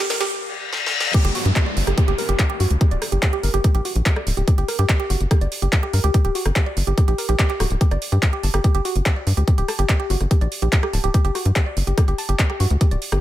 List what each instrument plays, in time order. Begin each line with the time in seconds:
Already playing: ambient pad G3, riser
0.10 synth arpeggio sound A#4, snare, open hi-hat
0.20 synth arpeggio sound G4, snare, closed hi-hat
0.31 reverse cymbal
0.73 snare
0.86 snare
1.00 snare
1.14 synth arpeggio sound G4, kick, closed hi-hat, crash, downlifter
1.25 analog synth bass G1, synth arpeggio sound G4, cross-stick, closed hi-hat
1.35 synth arpeggio sound F#4, open hi-hat
1.45 analog synth bass G2, closed hi-hat
1.56 synth arpeggio sound G4, kick, clap, closed hi-hat
1.66 synth arpeggio sound D5
1.77 analog synth bass G1, open hi-hat
1.87 analog synth bass G1, synth arpeggio sound G4, cross-stick, closed hi-hat
1.98 synth arpeggio sound G4, kick, closed hi-hat
2.08 analog synth bass G1, synth arpeggio sound G4, closed hi-hat
2.18 synth arpeggio sound A#4, open hi-hat
2.29 analog synth bass G1, synth arpeggio sound G4, closed hi-hat
2.39 synth arpeggio sound G4, kick, cross-stick, clap, closed hi-hat
2.50 synth arpeggio sound G4
2.60 analog synth bass G2, synth arpeggio sound F#4, open hi-hat
2.70 analog synth bass D2, closed hi-hat
2.81 synth arpeggio sound G4, kick, closed hi-hat
2.91 analog synth bass D1, synth arpeggio sound D5, closed hi-hat
3.02 cross-stick, open hi-hat
3.12 analog synth bass G1, synth arpeggio sound G4, closed hi-hat
3.23 synth arpeggio sound G4, kick, clap, closed hi-hat
3.33 synth arpeggio sound G4
3.43 analog synth bass G1, synth arpeggio sound A#4, open hi-hat
3.54 analog synth bass G1, synth arpeggio sound G4, cross-stick, closed hi-hat
3.64 synth arpeggio sound G4, kick, closed hi-hat
3.75 analog synth bass A#1, synth arpeggio sound G4, closed hi-hat
3.85 synth arpeggio sound F#4, open hi-hat
3.95 analog synth bass A#1, closed hi-hat
4.06 synth arpeggio sound G4, kick, clap, closed hi-hat
4.16 synth arpeggio sound D5, cross-stick
4.27 analog synth bass D1, open hi-hat
4.37 analog synth bass D1, synth arpeggio sound G4, closed hi-hat
4.48 synth arpeggio sound G4, kick, closed hi-hat
4.58 analog synth bass G1, synth arpeggio sound G4, closed hi-hat
4.68 synth arpeggio sound A#4, cross-stick, open hi-hat
4.79 analog synth bass G2, synth arpeggio sound G4, closed hi-hat
4.89 synth arpeggio sound G4, kick, clap, closed hi-hat
5.00 synth arpeggio sound G4
5.10 analog synth bass G1, synth arpeggio sound F#4, open hi-hat
5.21 analog synth bass G1, closed hi-hat
5.31 synth arpeggio sound G4, kick, cross-stick, closed hi-hat
5.41 analog synth bass G1, synth arpeggio sound D5, closed hi-hat
5.52 open hi-hat
5.62 analog synth bass G1, synth arpeggio sound G4, closed hi-hat
5.73 synth arpeggio sound G4, kick, clap, closed hi-hat
5.83 synth arpeggio sound G4, cross-stick
5.93 analog synth bass G2, synth arpeggio sound A#4, open hi-hat
6.04 analog synth bass D2, synth arpeggio sound G4, closed hi-hat
6.14 synth arpeggio sound G4, kick, closed hi-hat
6.25 analog synth bass D1, synth arpeggio sound G4, closed hi-hat
6.35 synth arpeggio sound F#4, open hi-hat
6.46 analog synth bass G1, cross-stick, closed hi-hat
6.56 synth arpeggio sound G4, kick, clap, closed hi-hat
6.66 synth arpeggio sound D5
6.77 analog synth bass G1, open hi-hat
6.87 analog synth bass G1, synth arpeggio sound G4, closed hi-hat
6.98 synth arpeggio sound G4, kick, cross-stick, closed hi-hat
7.08 analog synth bass A#1, synth arpeggio sound G4, closed hi-hat
7.18 synth arpeggio sound A#4, open hi-hat
7.29 analog synth bass A#1, synth arpeggio sound G4, closed hi-hat
7.39 synth arpeggio sound G4, kick, clap, closed hi-hat
7.50 synth arpeggio sound G4, clap
7.60 analog synth bass D1, synth arpeggio sound F#4, cross-stick, open hi-hat
7.71 analog synth bass D1, closed hi-hat
7.81 synth arpeggio sound G4, kick, closed hi-hat
7.91 analog synth bass G1, synth arpeggio sound D5, cross-stick, closed hi-hat
8.02 open hi-hat
8.12 analog synth bass G2, synth arpeggio sound G4, closed hi-hat
8.23 synth arpeggio sound G4, kick, clap, closed hi-hat
8.33 synth arpeggio sound G4
8.43 analog synth bass G1, synth arpeggio sound A5, open hi-hat
8.54 analog synth bass G1, synth arpeggio sound G4, cross-stick, closed hi-hat
8.64 synth arpeggio sound G4, kick, closed hi-hat
8.75 analog synth bass G1, synth arpeggio sound G4, closed hi-hat
8.85 synth arpeggio sound F#4, open hi-hat
8.96 analog synth bass G1, closed hi-hat
9.06 synth arpeggio sound G4, kick, cross-stick, clap, closed hi-hat
9.16 synth arpeggio sound D5
9.27 analog synth bass G2, open hi-hat
9.37 analog synth bass D2, synth arpeggio sound G4, closed hi-hat
9.48 synth arpeggio sound G4, kick, closed hi-hat
9.58 analog synth bass D1, synth arpeggio sound G4, closed hi-hat
9.68 synth arpeggio sound A5, cross-stick, open hi-hat
9.79 analog synth bass G1, synth arpeggio sound G4, closed hi-hat
9.89 synth arpeggio sound G4, kick, clap, closed hi-hat
10.00 synth arpeggio sound G4
10.10 analog synth bass G1, synth arpeggio sound F#4, open hi-hat
10.21 analog synth bass G1, cross-stick, closed hi-hat
10.31 synth arpeggio sound G4, kick, closed hi-hat
10.41 analog synth bass A#1, synth arpeggio sound D5, closed hi-hat
10.52 open hi-hat
10.62 analog synth bass A#1, synth arpeggio sound G4, closed hi-hat
10.73 synth arpeggio sound G4, kick, clap, closed hi-hat
10.83 synth arpeggio sound G4, cross-stick
10.93 analog synth bass D1, synth arpeggio sound A5, open hi-hat
11.04 analog synth bass D1, synth arpeggio sound G4, closed hi-hat
11.14 synth arpeggio sound G4, kick, closed hi-hat
11.25 analog synth bass G1, synth arpeggio sound G4, closed hi-hat
11.35 synth arpeggio sound F#4, cross-stick, open hi-hat
11.45 analog synth bass G2, closed hi-hat
11.56 synth arpeggio sound G4, kick, clap, closed hi-hat
11.66 synth arpeggio sound D5
11.77 analog synth bass G1, open hi-hat
11.87 analog synth bass G1, synth arpeggio sound G4, closed hi-hat
11.98 synth arpeggio sound G4, kick, cross-stick, closed hi-hat
12.08 analog synth bass G1, synth arpeggio sound G4, closed hi-hat
12.18 synth arpeggio sound A5, open hi-hat
12.29 analog synth bass G1, synth arpeggio sound G4, closed hi-hat
12.39 synth arpeggio sound G4, kick, clap, closed hi-hat
12.50 synth arpeggio sound G4, cross-stick
12.60 analog synth bass G2, synth arpeggio sound F#4, open hi-hat
12.71 analog synth bass D2, closed hi-hat
12.81 synth arpeggio sound G4, kick, closed hi-hat
12.91 analog synth bass D1, synth arpeggio sound D5, closed hi-hat
13.02 open hi-hat
13.12 analog synth bass G1, synth arpeggio sound G4, cross-stick, closed hi-hat